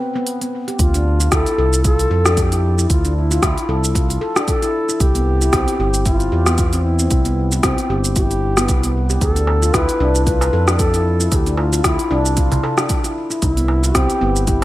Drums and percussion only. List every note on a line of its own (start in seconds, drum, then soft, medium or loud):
0.27 open hi-hat medium
0.41 open hi-hat soft
0.68 open hi-hat soft
0.79 kick loud
0.79 open hi-hat medium
0.79 shaker medium
0.94 open hi-hat soft
0.94 shaker soft
1.20 open hi-hat soft
1.20 shaker medium
1.32 kick loud
1.32 cross-stick medium
1.32 open hi-hat medium
1.32 shaker medium
1.46 open hi-hat soft
1.46 shaker soft
1.73 open hi-hat soft
1.73 shaker medium
1.84 kick loud
1.84 open hi-hat medium
1.84 shaker medium
1.99 open hi-hat soft
1.99 shaker soft
2.26 cross-stick medium
2.26 shaker medium
2.37 kick loud
2.37 open hi-hat medium
2.37 shaker medium
2.52 open hi-hat soft
2.52 shaker soft
2.79 shaker medium
2.90 kick loud
2.90 open hi-hat medium
2.90 shaker medium
3.05 open hi-hat soft
3.05 shaker soft
3.31 open hi-hat soft
3.31 shaker medium
3.43 kick loud
3.43 cross-stick medium
3.43 open hi-hat medium
3.43 shaker medium
3.58 open hi-hat soft
3.58 shaker soft
3.84 open hi-hat soft
3.84 shaker medium
3.95 kick loud
3.95 open hi-hat medium
3.95 shaker medium
4.10 open hi-hat soft
4.10 shaker soft
4.36 cross-stick medium
4.36 shaker medium
4.48 kick loud
4.48 open hi-hat medium
4.48 shaker medium
4.62 open hi-hat soft
4.62 shaker soft
4.89 shaker medium
5.00 kick loud
5.00 open hi-hat medium
5.00 shaker medium
5.15 open hi-hat soft
5.15 shaker soft
5.41 open hi-hat soft
5.41 shaker medium
5.53 kick loud
5.53 cross-stick medium
5.53 open hi-hat medium
5.53 shaker medium
5.68 open hi-hat soft
5.68 shaker soft
5.94 open hi-hat soft
5.94 shaker medium
6.06 kick loud
6.06 open hi-hat medium
6.06 shaker medium
6.20 open hi-hat soft
6.20 shaker soft
6.46 cross-stick medium
6.46 shaker medium
6.58 kick loud
6.58 open hi-hat medium
6.58 shaker medium
6.73 open hi-hat soft
6.73 shaker soft
6.99 shaker medium
7.11 kick loud
7.11 open hi-hat medium
7.11 shaker medium
7.25 open hi-hat soft
7.25 shaker soft
7.52 open hi-hat soft
7.52 shaker medium
7.63 kick loud
7.63 cross-stick medium
7.63 open hi-hat medium
7.63 shaker medium
7.78 open hi-hat soft
7.78 shaker soft
8.04 open hi-hat soft
8.04 shaker medium
8.16 kick loud
8.16 open hi-hat medium
8.16 shaker medium
8.31 open hi-hat soft
8.31 shaker soft
8.57 cross-stick medium
8.57 shaker medium
8.69 kick loud
8.69 open hi-hat medium
8.69 shaker medium
8.84 open hi-hat soft
8.84 shaker soft
9.10 shaker medium
9.21 kick loud
9.21 open hi-hat medium
9.21 darbuka ka medium
9.21 shaker medium
9.36 open hi-hat soft
9.36 shaker soft
9.47 darbuka tek medium
9.63 open hi-hat soft
9.63 shaker medium
9.74 kick loud
9.74 cross-stick medium
9.74 open hi-hat medium
9.74 shaker medium
9.89 open hi-hat soft
9.89 shaker soft
10.15 open hi-hat soft
10.15 shaker medium
10.27 kick loud
10.27 open hi-hat medium
10.27 shaker medium
10.41 open hi-hat soft
10.41 darbuka tek medium
10.41 shaker soft
10.68 cross-stick medium
10.68 shaker medium
10.79 kick loud
10.79 open hi-hat medium
10.79 shaker medium
10.94 open hi-hat soft
10.94 shaker soft
11.20 shaker medium
11.32 kick loud
11.32 open hi-hat medium
11.32 darbuka ka medium
11.32 shaker medium
11.46 open hi-hat soft
11.46 shaker soft
11.57 darbuka tek medium
11.73 open hi-hat soft
11.73 shaker medium
11.84 kick loud
11.84 cross-stick medium
11.84 open hi-hat medium
11.84 shaker medium
11.99 open hi-hat soft
11.99 shaker soft
12.11 darbuka ka soft
12.25 open hi-hat soft
12.25 shaker medium
12.37 kick loud
12.37 open hi-hat medium
12.37 shaker medium
12.52 open hi-hat soft
12.52 darbuka ka medium
12.52 darbuka dum medium
12.52 shaker soft
12.63 darbuka tek medium
12.78 cross-stick medium
12.78 shaker medium
12.89 kick loud
12.89 open hi-hat medium
12.89 shaker medium
13.04 open hi-hat soft
13.04 shaker soft
13.31 shaker medium
13.42 kick loud
13.42 open hi-hat medium
13.42 darbuka ka medium
13.42 shaker medium
13.57 open hi-hat soft
13.57 shaker soft
13.68 darbuka tek medium
13.84 open hi-hat soft
13.84 shaker medium
13.95 kick loud
13.95 cross-stick medium
13.95 open hi-hat medium
13.95 shaker medium
14.10 open hi-hat soft
14.10 shaker soft
14.36 open hi-hat soft
14.36 shaker medium
14.47 kick loud
14.47 open hi-hat medium
14.47 shaker soft